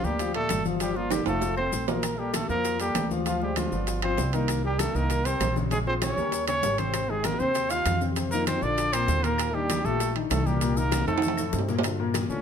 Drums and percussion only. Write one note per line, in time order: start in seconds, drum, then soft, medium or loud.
0.04 high conga soft
0.04 maracas soft
0.19 high bongo medium
0.19 high conga soft
0.19 high timbale medium
0.19 maracas medium
0.34 high conga soft
0.34 high timbale medium
0.49 high bongo medium
0.49 low bongo medium
0.49 high conga medium
0.49 high timbale medium
0.49 claves medium
0.49 maracas medium
0.65 high conga medium
0.65 maracas soft
0.80 high bongo medium
0.80 high conga soft
0.80 high timbale medium
0.80 maracas medium
0.96 high bongo soft
0.96 high conga soft
1.11 high bongo medium
1.11 high conga medium
1.11 high timbale loud
1.11 claves medium
1.11 maracas medium
1.26 high conga soft
1.26 high timbale medium
1.26 maracas soft
1.41 high bongo medium
1.41 high conga soft
1.41 low timbale medium
1.41 maracas medium
1.57 high bongo soft
1.57 high conga soft
1.57 claves medium
1.73 high bongo medium
1.73 low bongo medium
1.73 high conga soft
1.73 maracas medium
1.88 high bongo soft
1.88 high conga medium
1.88 low timbale loud
1.88 maracas soft
2.03 high bongo medium
2.03 high conga soft
2.03 high timbale medium
2.03 claves medium
2.03 maracas medium
2.19 high conga soft
2.34 high bongo medium
2.34 high conga medium
2.34 high timbale medium
2.34 claves medium
2.34 maracas medium
2.50 high conga soft
2.50 maracas soft
2.65 high bongo medium
2.65 high conga soft
2.65 high timbale medium
2.65 maracas medium
2.80 high conga soft
2.80 high timbale medium
2.80 maracas medium
2.95 high bongo medium
2.95 low bongo medium
2.95 high conga medium
2.95 high timbale medium
2.95 low timbale medium
2.95 claves medium
2.95 maracas medium
3.11 high conga medium
3.11 maracas soft
3.26 high bongo medium
3.26 high conga soft
3.26 high timbale medium
3.26 maracas medium
3.41 high bongo soft
3.41 high conga soft
3.56 high bongo medium
3.56 high conga medium
3.56 high timbale medium
3.56 claves medium
3.56 maracas medium
3.72 high conga soft
3.72 maracas soft
3.87 high bongo medium
3.87 high conga soft
3.87 high timbale medium
3.87 maracas medium
4.02 high bongo soft
4.02 high conga soft
4.02 high timbale medium
4.02 claves medium
4.17 high bongo medium
4.17 low bongo medium
4.17 high conga soft
4.17 low timbale medium
4.17 maracas medium
4.33 high bongo soft
4.33 high timbale medium
4.33 maracas soft
4.48 high bongo medium
4.48 high conga soft
4.48 high timbale medium
4.48 claves medium
4.48 maracas medium
4.64 high conga soft
4.79 high bongo medium
4.79 high conga medium
4.79 high timbale medium
4.79 claves medium
4.79 maracas medium
4.95 high conga soft
4.95 maracas soft
5.10 high bongo medium
5.10 high conga soft
5.10 high timbale medium
5.10 maracas medium
5.25 high conga soft
5.25 high timbale medium
5.25 maracas medium
5.40 high bongo medium
5.40 low bongo medium
5.40 high conga medium
5.40 high timbale medium
5.40 low timbale medium
5.40 claves medium
5.40 maracas medium
5.56 high conga medium
5.56 maracas soft
5.71 high bongo medium
5.71 high conga soft
5.71 high timbale medium
5.71 maracas medium
5.87 high bongo soft
5.87 high conga soft
6.02 high bongo medium
6.02 high conga loud
6.02 high timbale loud
6.02 claves medium
6.02 maracas medium
6.18 high conga soft
6.18 maracas soft
6.32 high bongo medium
6.32 high conga soft
6.32 high timbale medium
6.32 maracas medium
6.47 high bongo soft
6.47 high conga soft
6.47 high timbale loud
6.47 claves medium
6.47 maracas medium
6.63 high bongo medium
6.63 low bongo medium
6.63 high conga soft
6.63 low timbale medium
6.63 maracas medium
6.78 high bongo soft
6.78 high conga medium
6.78 high timbale medium
6.78 maracas soft
6.94 high bongo medium
6.94 high conga soft
6.94 high timbale medium
6.94 claves medium
6.94 maracas medium
7.10 high conga soft
7.24 high bongo medium
7.24 high conga medium
7.24 high timbale medium
7.24 claves medium
7.24 maracas medium
7.40 high conga soft
7.40 maracas soft
7.55 high bongo medium
7.55 high conga soft
7.55 high timbale medium
7.55 maracas medium
7.70 high conga soft
7.70 high timbale medium
7.70 maracas medium
7.86 high bongo medium
7.86 low bongo medium
7.86 high conga medium
7.86 high timbale medium
7.86 claves medium
7.86 maracas medium
8.01 high conga medium
8.01 maracas soft
8.16 high bongo medium
8.16 high conga soft
8.16 high timbale medium
8.16 maracas medium
8.32 high bongo soft
8.32 high conga soft
8.32 maracas medium
8.47 high bongo medium
8.47 high conga medium
8.47 high timbale medium
8.47 claves medium
8.47 maracas medium
8.62 high conga soft
8.62 maracas soft
8.78 high bongo medium
8.78 high timbale medium
8.78 maracas medium
8.93 high bongo soft
8.93 high conga soft
8.93 high timbale loud
8.93 claves medium
8.93 maracas medium
9.08 high bongo medium
9.08 low bongo medium
9.08 maracas medium
9.24 high bongo soft
9.24 high timbale medium
9.24 maracas soft
9.38 high bongo medium
9.38 high conga soft
9.38 high timbale loud
9.38 claves medium
9.38 maracas medium
9.55 high conga soft
9.69 high bongo medium
9.69 high conga medium
9.69 high timbale medium
9.69 claves medium
9.69 maracas medium
9.85 high conga soft
9.85 maracas soft
10.00 high bongo medium
10.00 high conga soft
10.00 high timbale medium
10.00 maracas medium
10.16 high conga soft
10.16 high timbale medium
10.31 high bongo medium
10.31 low bongo medium
10.31 high conga medium
10.31 high timbale loud
10.31 low timbale medium
10.31 claves medium
10.31 maracas medium
10.47 high conga medium
10.47 maracas soft
10.61 high bongo medium
10.61 high timbale medium
10.61 maracas medium
10.77 high bongo soft
10.77 maracas medium
10.92 high bongo medium
10.92 high conga medium
10.92 high timbale medium
10.92 claves medium
10.92 maracas medium
11.07 high conga soft
11.07 high timbale medium
11.07 maracas soft
11.18 high timbale loud
11.22 high bongo medium
11.22 high conga medium
11.22 maracas medium
11.28 high timbale loud
11.37 high bongo soft
11.37 claves medium
11.37 maracas medium
11.53 high bongo medium
11.53 low bongo medium
11.53 maracas medium
11.59 low timbale medium
11.68 high bongo soft
11.68 low conga medium
11.68 maracas soft
11.79 low timbale loud
11.84 high bongo medium
11.84 high conga soft
11.84 high timbale medium
11.84 claves medium
11.84 maracas medium
11.99 high conga soft
12.14 high bongo medium
12.14 high conga medium
12.14 high timbale medium
12.14 claves medium
12.14 maracas medium
12.30 high conga soft
12.30 maracas soft